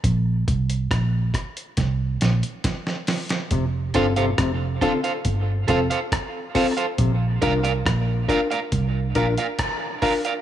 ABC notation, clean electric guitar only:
X:1
M:4/4
L:1/16
Q:1/4=69
K:F
V:1 name="Clean electric guitar"
z16 | z2 [Acf] [Acf] z2 [Acf] [Acf] z2 [Acf] [Acf] z2 [Acf] [Acf] | z2 [Bdf] [Bdf] z2 [Bdf] [Bdf] z2 [Bdf] [Bdf] z2 [Bdf] [Bdf] |]